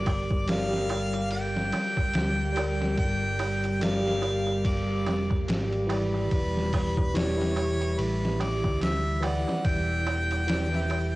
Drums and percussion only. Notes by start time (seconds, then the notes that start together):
0.06 kick, open hi-hat, darbuka tek
0.31 kick, darbuka tek
0.47 snare, ride, darbuka tek
0.73 snare
0.89 ride, darbuka tek
1.13 ride, darbuka tek
1.30 ride, darbuka tek
1.56 snare
1.72 snare, ride, darbuka tek
1.97 kick, darbuka tek
2.13 snare, ride, darbuka tek
2.56 ride, darbuka tek
2.81 snare, darbuka tek
2.97 kick, ride, darbuka tek
3.39 ride, darbuka tek
3.64 ride, darbuka tek
3.81 snare, ride, darbuka tek
4.08 snare
4.22 ride, darbuka tek
4.47 darbuka tek
4.65 kick, ride, darbuka tek
5.07 snare, ride, darbuka tek
5.30 kick, darbuka tek
5.48 snare, ride, darbuka tek
5.72 ride
5.89 ride, darbuka tek
6.14 darbuka tek
6.31 kick, ride, darbuka tek
6.57 snare
6.73 kick, open hi-hat, darbuka tek
6.97 kick, darbuka tek
7.14 snare, ride, darbuka tek
7.41 snare
7.56 ride, darbuka tek
7.81 ride, darbuka tek
7.99 ride, darbuka tek
8.25 snare
8.40 snare, ride, darbuka tek
8.64 kick, darbuka tek
8.81 snare, ride, darbuka tek
9.23 ride, darbuka tek
9.48 snare, darbuka tek
9.65 kick, ride, darbuka tek
10.07 ride, darbuka tek
10.31 ride, darbuka tek
10.48 snare, ride, darbuka tek
10.74 snare
10.90 ride, darbuka tek